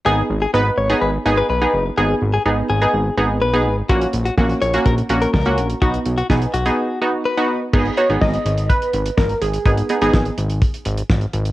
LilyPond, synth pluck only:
\new Staff \with { instrumentName = "Synth pluck" } { \time 4/4 \key gis \minor \tempo 4 = 125 <b dis' gis'>8 r8 <b dis' b'>8 r16 <b dis' gis'>8 r16 <b dis' gis'>8 r16 <b dis' gis'>8 r16 | <b dis' gis'>8 r8 <b dis' gis'>8 r16 <b dis' gis'>8 r16 <b dis' gis'>8 r16 <b dis' gis'>8 r16 | <ais cis' fis'>8 r8 <ais cis' fis'>8 r16 <ais cis' fis'>8 r16 <ais cis' fis'>8 r16 <ais cis' fis'>8 r16 | <b dis' fis'>8 r8 <b dis' gis'>8 r16 <b dis' gis'>8 r16 <b dis' fis'>8 r16 <b dis' fis'>8 r16 |
<b dis' gis'>16 r16 <b dis' fis'>16 <b dis' gis'>4~ <b dis' gis'>16 r2 | <b dis' gis'>16 r16 <b dis' gis'>16 <b dis' gis'>4~ <b dis' gis'>16 r2 | }